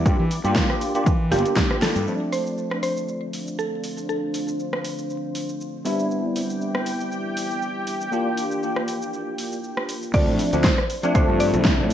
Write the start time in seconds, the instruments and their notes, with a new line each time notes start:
Already playing: analog synth pad D5 D6
0.05 fingered electric bass G2, tine electric piano A#3 D4 F4 G4, kick, closed hi-hat, shaker
0.19 fingered electric bass E3
0.31 open hi-hat, shaker
0.44 fingered electric bass G2, tine electric piano A#3 D4 F4 G4, closed hi-hat, shaker
0.56 kick, snare, closed hi-hat, shaker
0.70 cross-stick
0.81 open hi-hat, shaker
0.95 tine electric piano A#3 D4 F4 G4, closed hi-hat, shaker
1.06 fingered electric bass E3, kick, closed hi-hat, shaker
1.31 fingered electric bass G1, tine electric piano A#3 D4 F4 G4, synth pluck G4, open hi-hat, shaker
1.39 closed hi-hat
1.46 closed hi-hat, shaker
1.56 kick, snare, closed hi-hat, shaker
1.71 cross-stick
1.82 synth pluck A4, snare, open hi-hat, shaker
1.96 fingered electric bass G2, closed hi-hat, shaker
2.06 tine electric piano F3 A3 C4 D4, ambient pad D4, shaker
2.16 ambient pad C5
2.24 ambient pad F5
2.32 synth pluck C5, open hi-hat, shaker
2.47 shaker
2.58 shaker
2.71 cross-stick
2.83 synth pluck C5, open hi-hat, shaker
2.97 shaker
3.08 shaker
3.33 open hi-hat, shaker
3.47 shaker
3.59 synth pluck A4, shaker
3.84 open hi-hat, shaker
3.98 shaker
4.09 synth pluck A4, shaker
4.34 open hi-hat, shaker
4.48 shaker
4.60 shaker
4.73 cross-stick
4.85 open hi-hat, shaker
4.99 shaker
5.10 shaker
5.35 open hi-hat, shaker
5.49 shaker
5.61 shaker
5.85 tine electric piano G3 B3 D4 E4, ambient pad E4, open hi-hat, shaker
5.99 shaker
6.11 analog synth pad G4 G5, ambient pad D5, shaker
6.36 ambient pad G5, open hi-hat, shaker
6.50 shaker
6.61 shaker
6.75 cross-stick
6.86 open hi-hat, shaker
7.00 shaker
7.12 shaker
7.37 open hi-hat, shaker
7.51 shaker
7.62 shaker
7.87 open hi-hat, shaker
8.01 shaker
8.12 tine electric piano A#3 D4 F4 G4, ambient pad F4, shaker
8.37 open hi-hat, shaker
8.51 shaker
8.63 shaker
8.76 ambient pad A#4, cross-stick
8.88 open hi-hat, shaker
9.02 shaker
9.13 shaker
9.38 open hi-hat, shaker
9.52 shaker
9.64 shaker
9.77 cross-stick
9.89 open hi-hat, shaker
10.03 shaker
10.14 fingered electric bass D2, tine electric piano F3 A3 C4 D4, synth pluck D5, kick, closed hi-hat, crash, shaker
10.28 fingered electric bass A2
10.39 open hi-hat, shaker
10.53 fingered electric bass D2, tine electric piano F3 A3 C4 D4, closed hi-hat, shaker
10.64 synth pluck C5, kick, snare, closed hi-hat, shaker
10.78 cross-stick
10.90 open hi-hat, shaker
11.03 tine electric piano F3 A3 C4 D4, closed hi-hat, shaker
11.14 fingered electric bass D2, tine electric piano F3 A3 C4 D4, synth pluck C5, kick, closed hi-hat, shaker
11.28 fingered electric bass G2
11.40 synth pluck D5, open hi-hat, shaker
11.54 fingered electric bass C2, closed hi-hat, shaker
11.65 kick, snare, closed hi-hat, shaker
11.79 fingered electric bass A2
11.90 open hi-hat